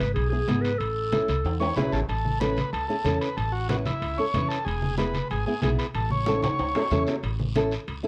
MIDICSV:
0, 0, Header, 1, 6, 480
1, 0, Start_track
1, 0, Key_signature, 3, "major"
1, 0, Tempo, 321716
1, 1198, Time_signature, 4, 2, 24, 8
1, 12048, End_track
2, 0, Start_track
2, 0, Title_t, "Clarinet"
2, 0, Program_c, 0, 71
2, 0, Note_on_c, 0, 71, 84
2, 202, Note_off_c, 0, 71, 0
2, 210, Note_on_c, 0, 68, 78
2, 436, Note_off_c, 0, 68, 0
2, 445, Note_on_c, 0, 68, 80
2, 919, Note_on_c, 0, 71, 92
2, 942, Note_off_c, 0, 68, 0
2, 1175, Note_on_c, 0, 69, 80
2, 1197, Note_off_c, 0, 71, 0
2, 2625, Note_off_c, 0, 69, 0
2, 12048, End_track
3, 0, Start_track
3, 0, Title_t, "Transistor combo organ"
3, 0, Program_c, 1, 18
3, 2389, Note_on_c, 1, 73, 96
3, 2616, Note_off_c, 1, 73, 0
3, 2625, Note_on_c, 1, 71, 90
3, 2873, Note_on_c, 1, 69, 96
3, 2878, Note_off_c, 1, 71, 0
3, 2981, Note_off_c, 1, 69, 0
3, 3120, Note_on_c, 1, 69, 74
3, 3565, Note_off_c, 1, 69, 0
3, 3580, Note_on_c, 1, 71, 104
3, 4034, Note_off_c, 1, 71, 0
3, 4069, Note_on_c, 1, 69, 92
3, 4278, Note_off_c, 1, 69, 0
3, 4296, Note_on_c, 1, 69, 98
3, 4752, Note_off_c, 1, 69, 0
3, 4792, Note_on_c, 1, 71, 99
3, 5017, Note_off_c, 1, 71, 0
3, 5025, Note_on_c, 1, 69, 80
3, 5253, Note_on_c, 1, 66, 77
3, 5254, Note_off_c, 1, 69, 0
3, 5486, Note_off_c, 1, 66, 0
3, 5504, Note_on_c, 1, 66, 89
3, 5615, Note_off_c, 1, 66, 0
3, 5754, Note_on_c, 1, 64, 94
3, 6230, Note_on_c, 1, 73, 97
3, 6250, Note_off_c, 1, 64, 0
3, 6679, Note_off_c, 1, 73, 0
3, 6689, Note_on_c, 1, 69, 96
3, 6925, Note_off_c, 1, 69, 0
3, 6933, Note_on_c, 1, 68, 76
3, 7390, Note_off_c, 1, 68, 0
3, 7426, Note_on_c, 1, 71, 96
3, 7878, Note_off_c, 1, 71, 0
3, 7917, Note_on_c, 1, 68, 83
3, 8129, Note_off_c, 1, 68, 0
3, 8147, Note_on_c, 1, 68, 79
3, 8365, Note_off_c, 1, 68, 0
3, 8383, Note_on_c, 1, 68, 84
3, 8494, Note_off_c, 1, 68, 0
3, 8632, Note_on_c, 1, 71, 93
3, 8741, Note_off_c, 1, 71, 0
3, 8882, Note_on_c, 1, 69, 83
3, 9103, Note_off_c, 1, 69, 0
3, 9121, Note_on_c, 1, 73, 83
3, 9566, Note_off_c, 1, 73, 0
3, 9593, Note_on_c, 1, 73, 90
3, 10496, Note_off_c, 1, 73, 0
3, 12048, End_track
4, 0, Start_track
4, 0, Title_t, "Nylon-string guitar"
4, 0, Program_c, 2, 24
4, 478, Note_on_c, 2, 59, 58
4, 482, Note_on_c, 2, 64, 52
4, 488, Note_on_c, 2, 68, 66
4, 563, Note_off_c, 2, 59, 0
4, 563, Note_off_c, 2, 64, 0
4, 565, Note_off_c, 2, 68, 0
4, 720, Note_on_c, 2, 59, 65
4, 726, Note_on_c, 2, 64, 66
4, 733, Note_on_c, 2, 68, 71
4, 1055, Note_off_c, 2, 59, 0
4, 1058, Note_off_c, 2, 64, 0
4, 1060, Note_off_c, 2, 68, 0
4, 1677, Note_on_c, 2, 61, 70
4, 1684, Note_on_c, 2, 64, 56
4, 1690, Note_on_c, 2, 69, 65
4, 1929, Note_off_c, 2, 61, 0
4, 1933, Note_off_c, 2, 64, 0
4, 1936, Note_off_c, 2, 69, 0
4, 2382, Note_on_c, 2, 61, 69
4, 2396, Note_on_c, 2, 64, 62
4, 2403, Note_on_c, 2, 71, 80
4, 2474, Note_off_c, 2, 61, 0
4, 2481, Note_off_c, 2, 64, 0
4, 2481, Note_off_c, 2, 71, 0
4, 2631, Note_on_c, 2, 61, 88
4, 2645, Note_on_c, 2, 64, 82
4, 2651, Note_on_c, 2, 68, 94
4, 2972, Note_off_c, 2, 61, 0
4, 2975, Note_off_c, 2, 64, 0
4, 2980, Note_off_c, 2, 68, 0
4, 3594, Note_on_c, 2, 61, 69
4, 3598, Note_on_c, 2, 64, 59
4, 3608, Note_on_c, 2, 69, 75
4, 3847, Note_off_c, 2, 61, 0
4, 3850, Note_off_c, 2, 64, 0
4, 3853, Note_off_c, 2, 69, 0
4, 4314, Note_on_c, 2, 61, 64
4, 4322, Note_on_c, 2, 64, 58
4, 4327, Note_on_c, 2, 68, 72
4, 4400, Note_off_c, 2, 61, 0
4, 4402, Note_off_c, 2, 64, 0
4, 4406, Note_off_c, 2, 68, 0
4, 4546, Note_on_c, 2, 61, 74
4, 4556, Note_on_c, 2, 64, 71
4, 4560, Note_on_c, 2, 69, 79
4, 4888, Note_off_c, 2, 61, 0
4, 4890, Note_off_c, 2, 64, 0
4, 4894, Note_off_c, 2, 69, 0
4, 5507, Note_on_c, 2, 61, 65
4, 5518, Note_on_c, 2, 64, 62
4, 5519, Note_on_c, 2, 71, 82
4, 5764, Note_off_c, 2, 61, 0
4, 5767, Note_off_c, 2, 64, 0
4, 5770, Note_off_c, 2, 71, 0
4, 6239, Note_on_c, 2, 61, 62
4, 6250, Note_on_c, 2, 64, 58
4, 6256, Note_on_c, 2, 69, 73
4, 6322, Note_off_c, 2, 61, 0
4, 6327, Note_off_c, 2, 64, 0
4, 6329, Note_off_c, 2, 69, 0
4, 6480, Note_on_c, 2, 61, 67
4, 6486, Note_on_c, 2, 64, 67
4, 6497, Note_on_c, 2, 71, 84
4, 6814, Note_off_c, 2, 61, 0
4, 6818, Note_off_c, 2, 64, 0
4, 6821, Note_off_c, 2, 71, 0
4, 7430, Note_on_c, 2, 59, 69
4, 7443, Note_on_c, 2, 64, 61
4, 7450, Note_on_c, 2, 68, 81
4, 7687, Note_off_c, 2, 59, 0
4, 7689, Note_off_c, 2, 64, 0
4, 7695, Note_off_c, 2, 68, 0
4, 8158, Note_on_c, 2, 59, 64
4, 8170, Note_on_c, 2, 64, 55
4, 8172, Note_on_c, 2, 68, 69
4, 8243, Note_off_c, 2, 59, 0
4, 8245, Note_off_c, 2, 64, 0
4, 8249, Note_off_c, 2, 68, 0
4, 8393, Note_on_c, 2, 59, 69
4, 8399, Note_on_c, 2, 64, 74
4, 8408, Note_on_c, 2, 68, 81
4, 8731, Note_off_c, 2, 59, 0
4, 8735, Note_off_c, 2, 64, 0
4, 8737, Note_off_c, 2, 68, 0
4, 9354, Note_on_c, 2, 61, 68
4, 9361, Note_on_c, 2, 64, 62
4, 9369, Note_on_c, 2, 69, 81
4, 9608, Note_off_c, 2, 61, 0
4, 9611, Note_off_c, 2, 64, 0
4, 9614, Note_off_c, 2, 69, 0
4, 10077, Note_on_c, 2, 61, 61
4, 10082, Note_on_c, 2, 64, 60
4, 10092, Note_on_c, 2, 69, 70
4, 10161, Note_off_c, 2, 61, 0
4, 10165, Note_off_c, 2, 64, 0
4, 10168, Note_off_c, 2, 69, 0
4, 10313, Note_on_c, 2, 61, 90
4, 10322, Note_on_c, 2, 64, 76
4, 10329, Note_on_c, 2, 69, 92
4, 10652, Note_off_c, 2, 61, 0
4, 10655, Note_off_c, 2, 64, 0
4, 10659, Note_off_c, 2, 69, 0
4, 11274, Note_on_c, 2, 61, 75
4, 11280, Note_on_c, 2, 64, 73
4, 11286, Note_on_c, 2, 69, 96
4, 11528, Note_off_c, 2, 61, 0
4, 11532, Note_off_c, 2, 64, 0
4, 11533, Note_off_c, 2, 69, 0
4, 11983, Note_on_c, 2, 61, 73
4, 11990, Note_on_c, 2, 64, 66
4, 11995, Note_on_c, 2, 69, 84
4, 12048, Note_off_c, 2, 61, 0
4, 12048, Note_off_c, 2, 64, 0
4, 12048, Note_off_c, 2, 69, 0
4, 12048, End_track
5, 0, Start_track
5, 0, Title_t, "Upright bass"
5, 0, Program_c, 3, 32
5, 3, Note_on_c, 3, 32, 84
5, 193, Note_off_c, 3, 32, 0
5, 237, Note_on_c, 3, 35, 93
5, 621, Note_off_c, 3, 35, 0
5, 717, Note_on_c, 3, 32, 90
5, 1101, Note_off_c, 3, 32, 0
5, 1195, Note_on_c, 3, 33, 85
5, 1772, Note_off_c, 3, 33, 0
5, 1914, Note_on_c, 3, 37, 82
5, 2107, Note_off_c, 3, 37, 0
5, 2153, Note_on_c, 3, 40, 82
5, 2538, Note_off_c, 3, 40, 0
5, 2628, Note_on_c, 3, 35, 77
5, 2848, Note_off_c, 3, 35, 0
5, 2875, Note_on_c, 3, 33, 79
5, 3092, Note_off_c, 3, 33, 0
5, 3116, Note_on_c, 3, 33, 81
5, 3884, Note_off_c, 3, 33, 0
5, 4070, Note_on_c, 3, 37, 86
5, 4264, Note_off_c, 3, 37, 0
5, 4545, Note_on_c, 3, 40, 94
5, 4741, Note_off_c, 3, 40, 0
5, 5033, Note_on_c, 3, 33, 90
5, 5803, Note_off_c, 3, 33, 0
5, 5989, Note_on_c, 3, 37, 82
5, 6184, Note_off_c, 3, 37, 0
5, 6472, Note_on_c, 3, 40, 97
5, 6666, Note_off_c, 3, 40, 0
5, 6955, Note_on_c, 3, 28, 88
5, 7724, Note_off_c, 3, 28, 0
5, 7921, Note_on_c, 3, 32, 86
5, 8111, Note_off_c, 3, 32, 0
5, 8395, Note_on_c, 3, 35, 98
5, 8588, Note_off_c, 3, 35, 0
5, 8879, Note_on_c, 3, 33, 86
5, 9646, Note_off_c, 3, 33, 0
5, 9840, Note_on_c, 3, 37, 81
5, 10031, Note_off_c, 3, 37, 0
5, 10313, Note_on_c, 3, 40, 88
5, 10507, Note_off_c, 3, 40, 0
5, 10790, Note_on_c, 3, 33, 91
5, 11562, Note_off_c, 3, 33, 0
5, 11755, Note_on_c, 3, 37, 79
5, 11948, Note_off_c, 3, 37, 0
5, 12048, End_track
6, 0, Start_track
6, 0, Title_t, "Drums"
6, 9, Note_on_c, 9, 65, 62
6, 13, Note_on_c, 9, 73, 68
6, 158, Note_off_c, 9, 65, 0
6, 162, Note_off_c, 9, 73, 0
6, 230, Note_on_c, 9, 63, 34
6, 239, Note_on_c, 9, 65, 61
6, 245, Note_on_c, 9, 74, 64
6, 379, Note_off_c, 9, 63, 0
6, 388, Note_off_c, 9, 65, 0
6, 394, Note_off_c, 9, 74, 0
6, 711, Note_on_c, 9, 63, 81
6, 720, Note_on_c, 9, 73, 61
6, 727, Note_on_c, 9, 65, 68
6, 860, Note_off_c, 9, 63, 0
6, 870, Note_off_c, 9, 73, 0
6, 876, Note_off_c, 9, 65, 0
6, 962, Note_on_c, 9, 73, 69
6, 969, Note_on_c, 9, 65, 65
6, 1111, Note_off_c, 9, 73, 0
6, 1118, Note_off_c, 9, 65, 0
6, 1195, Note_on_c, 9, 63, 37
6, 1199, Note_on_c, 9, 74, 59
6, 1204, Note_on_c, 9, 65, 62
6, 1344, Note_off_c, 9, 63, 0
6, 1348, Note_off_c, 9, 74, 0
6, 1353, Note_off_c, 9, 65, 0
6, 1677, Note_on_c, 9, 63, 91
6, 1679, Note_on_c, 9, 73, 68
6, 1680, Note_on_c, 9, 65, 66
6, 1827, Note_off_c, 9, 63, 0
6, 1828, Note_off_c, 9, 73, 0
6, 1829, Note_off_c, 9, 65, 0
6, 1913, Note_on_c, 9, 73, 60
6, 1915, Note_on_c, 9, 63, 63
6, 1931, Note_on_c, 9, 65, 62
6, 2063, Note_off_c, 9, 73, 0
6, 2065, Note_off_c, 9, 63, 0
6, 2080, Note_off_c, 9, 65, 0
6, 2159, Note_on_c, 9, 74, 59
6, 2165, Note_on_c, 9, 63, 35
6, 2173, Note_on_c, 9, 65, 72
6, 2308, Note_off_c, 9, 74, 0
6, 2314, Note_off_c, 9, 63, 0
6, 2322, Note_off_c, 9, 65, 0
6, 2420, Note_on_c, 9, 65, 85
6, 2569, Note_off_c, 9, 65, 0
6, 2632, Note_on_c, 9, 73, 64
6, 2642, Note_on_c, 9, 63, 83
6, 2647, Note_on_c, 9, 66, 86
6, 2781, Note_off_c, 9, 73, 0
6, 2791, Note_off_c, 9, 63, 0
6, 2797, Note_off_c, 9, 66, 0
6, 2873, Note_on_c, 9, 73, 66
6, 2894, Note_on_c, 9, 66, 88
6, 3022, Note_off_c, 9, 73, 0
6, 3043, Note_off_c, 9, 66, 0
6, 3112, Note_on_c, 9, 74, 71
6, 3118, Note_on_c, 9, 63, 36
6, 3126, Note_on_c, 9, 65, 59
6, 3262, Note_off_c, 9, 74, 0
6, 3267, Note_off_c, 9, 63, 0
6, 3275, Note_off_c, 9, 65, 0
6, 3356, Note_on_c, 9, 63, 64
6, 3505, Note_off_c, 9, 63, 0
6, 3592, Note_on_c, 9, 73, 67
6, 3594, Note_on_c, 9, 63, 92
6, 3606, Note_on_c, 9, 65, 63
6, 3742, Note_off_c, 9, 73, 0
6, 3743, Note_off_c, 9, 63, 0
6, 3755, Note_off_c, 9, 65, 0
6, 3828, Note_on_c, 9, 73, 60
6, 3839, Note_on_c, 9, 63, 65
6, 3846, Note_on_c, 9, 65, 60
6, 3978, Note_off_c, 9, 73, 0
6, 3988, Note_off_c, 9, 63, 0
6, 3995, Note_off_c, 9, 65, 0
6, 4073, Note_on_c, 9, 63, 37
6, 4074, Note_on_c, 9, 74, 70
6, 4087, Note_on_c, 9, 65, 70
6, 4222, Note_off_c, 9, 63, 0
6, 4224, Note_off_c, 9, 74, 0
6, 4237, Note_off_c, 9, 65, 0
6, 4543, Note_on_c, 9, 63, 78
6, 4558, Note_on_c, 9, 73, 69
6, 4560, Note_on_c, 9, 65, 72
6, 4692, Note_off_c, 9, 63, 0
6, 4707, Note_off_c, 9, 73, 0
6, 4709, Note_off_c, 9, 65, 0
6, 4796, Note_on_c, 9, 65, 65
6, 4801, Note_on_c, 9, 73, 78
6, 4946, Note_off_c, 9, 65, 0
6, 4950, Note_off_c, 9, 73, 0
6, 5023, Note_on_c, 9, 63, 36
6, 5037, Note_on_c, 9, 74, 65
6, 5039, Note_on_c, 9, 65, 60
6, 5172, Note_off_c, 9, 63, 0
6, 5187, Note_off_c, 9, 74, 0
6, 5188, Note_off_c, 9, 65, 0
6, 5506, Note_on_c, 9, 63, 86
6, 5511, Note_on_c, 9, 73, 69
6, 5512, Note_on_c, 9, 65, 59
6, 5655, Note_off_c, 9, 63, 0
6, 5661, Note_off_c, 9, 65, 0
6, 5661, Note_off_c, 9, 73, 0
6, 5747, Note_on_c, 9, 63, 60
6, 5747, Note_on_c, 9, 64, 58
6, 5747, Note_on_c, 9, 73, 63
6, 5764, Note_on_c, 9, 65, 62
6, 5896, Note_off_c, 9, 63, 0
6, 5896, Note_off_c, 9, 64, 0
6, 5896, Note_off_c, 9, 73, 0
6, 5913, Note_off_c, 9, 65, 0
6, 5989, Note_on_c, 9, 63, 36
6, 5993, Note_on_c, 9, 74, 64
6, 5997, Note_on_c, 9, 65, 62
6, 6139, Note_off_c, 9, 63, 0
6, 6142, Note_off_c, 9, 74, 0
6, 6146, Note_off_c, 9, 65, 0
6, 6472, Note_on_c, 9, 63, 85
6, 6472, Note_on_c, 9, 64, 77
6, 6474, Note_on_c, 9, 73, 60
6, 6480, Note_on_c, 9, 65, 65
6, 6621, Note_off_c, 9, 63, 0
6, 6621, Note_off_c, 9, 64, 0
6, 6623, Note_off_c, 9, 73, 0
6, 6629, Note_off_c, 9, 65, 0
6, 6720, Note_on_c, 9, 73, 77
6, 6735, Note_on_c, 9, 65, 64
6, 6869, Note_off_c, 9, 73, 0
6, 6884, Note_off_c, 9, 65, 0
6, 6945, Note_on_c, 9, 63, 34
6, 6961, Note_on_c, 9, 74, 71
6, 6980, Note_on_c, 9, 65, 64
6, 7094, Note_off_c, 9, 63, 0
6, 7110, Note_off_c, 9, 74, 0
6, 7129, Note_off_c, 9, 65, 0
6, 7190, Note_on_c, 9, 63, 70
6, 7340, Note_off_c, 9, 63, 0
6, 7422, Note_on_c, 9, 63, 94
6, 7435, Note_on_c, 9, 73, 68
6, 7447, Note_on_c, 9, 65, 68
6, 7571, Note_off_c, 9, 63, 0
6, 7584, Note_off_c, 9, 73, 0
6, 7597, Note_off_c, 9, 65, 0
6, 7663, Note_on_c, 9, 63, 62
6, 7674, Note_on_c, 9, 73, 61
6, 7677, Note_on_c, 9, 65, 57
6, 7813, Note_off_c, 9, 63, 0
6, 7823, Note_off_c, 9, 73, 0
6, 7826, Note_off_c, 9, 65, 0
6, 7906, Note_on_c, 9, 63, 36
6, 7916, Note_on_c, 9, 74, 63
6, 7918, Note_on_c, 9, 65, 61
6, 8055, Note_off_c, 9, 63, 0
6, 8065, Note_off_c, 9, 74, 0
6, 8067, Note_off_c, 9, 65, 0
6, 8382, Note_on_c, 9, 63, 83
6, 8397, Note_on_c, 9, 73, 61
6, 8406, Note_on_c, 9, 65, 71
6, 8531, Note_off_c, 9, 63, 0
6, 8546, Note_off_c, 9, 73, 0
6, 8555, Note_off_c, 9, 65, 0
6, 8639, Note_on_c, 9, 73, 69
6, 8647, Note_on_c, 9, 65, 67
6, 8788, Note_off_c, 9, 73, 0
6, 8796, Note_off_c, 9, 65, 0
6, 8862, Note_on_c, 9, 63, 35
6, 8873, Note_on_c, 9, 65, 69
6, 8877, Note_on_c, 9, 74, 70
6, 9012, Note_off_c, 9, 63, 0
6, 9022, Note_off_c, 9, 65, 0
6, 9026, Note_off_c, 9, 74, 0
6, 9109, Note_on_c, 9, 63, 72
6, 9258, Note_off_c, 9, 63, 0
6, 9346, Note_on_c, 9, 63, 84
6, 9356, Note_on_c, 9, 73, 67
6, 9363, Note_on_c, 9, 65, 61
6, 9496, Note_off_c, 9, 63, 0
6, 9505, Note_off_c, 9, 73, 0
6, 9512, Note_off_c, 9, 65, 0
6, 9586, Note_on_c, 9, 63, 73
6, 9586, Note_on_c, 9, 64, 62
6, 9590, Note_on_c, 9, 73, 59
6, 9606, Note_on_c, 9, 65, 85
6, 9735, Note_off_c, 9, 63, 0
6, 9735, Note_off_c, 9, 64, 0
6, 9739, Note_off_c, 9, 73, 0
6, 9755, Note_off_c, 9, 65, 0
6, 9828, Note_on_c, 9, 63, 36
6, 9831, Note_on_c, 9, 74, 69
6, 9839, Note_on_c, 9, 65, 89
6, 9978, Note_off_c, 9, 63, 0
6, 9980, Note_off_c, 9, 74, 0
6, 9988, Note_off_c, 9, 65, 0
6, 10073, Note_on_c, 9, 66, 102
6, 10222, Note_off_c, 9, 66, 0
6, 10308, Note_on_c, 9, 73, 61
6, 10317, Note_on_c, 9, 63, 80
6, 10317, Note_on_c, 9, 64, 81
6, 10321, Note_on_c, 9, 66, 72
6, 10457, Note_off_c, 9, 73, 0
6, 10466, Note_off_c, 9, 63, 0
6, 10466, Note_off_c, 9, 64, 0
6, 10470, Note_off_c, 9, 66, 0
6, 10543, Note_on_c, 9, 73, 69
6, 10563, Note_on_c, 9, 66, 79
6, 10692, Note_off_c, 9, 73, 0
6, 10712, Note_off_c, 9, 66, 0
6, 10785, Note_on_c, 9, 74, 66
6, 10797, Note_on_c, 9, 65, 65
6, 10804, Note_on_c, 9, 63, 38
6, 10934, Note_off_c, 9, 74, 0
6, 10946, Note_off_c, 9, 65, 0
6, 10953, Note_off_c, 9, 63, 0
6, 11032, Note_on_c, 9, 63, 68
6, 11182, Note_off_c, 9, 63, 0
6, 11272, Note_on_c, 9, 73, 66
6, 11273, Note_on_c, 9, 63, 91
6, 11279, Note_on_c, 9, 65, 65
6, 11422, Note_off_c, 9, 63, 0
6, 11422, Note_off_c, 9, 73, 0
6, 11428, Note_off_c, 9, 65, 0
6, 11509, Note_on_c, 9, 73, 68
6, 11524, Note_on_c, 9, 65, 55
6, 11658, Note_off_c, 9, 73, 0
6, 11673, Note_off_c, 9, 65, 0
6, 11749, Note_on_c, 9, 63, 38
6, 11751, Note_on_c, 9, 74, 69
6, 11758, Note_on_c, 9, 65, 61
6, 11899, Note_off_c, 9, 63, 0
6, 11900, Note_off_c, 9, 74, 0
6, 11907, Note_off_c, 9, 65, 0
6, 12048, End_track
0, 0, End_of_file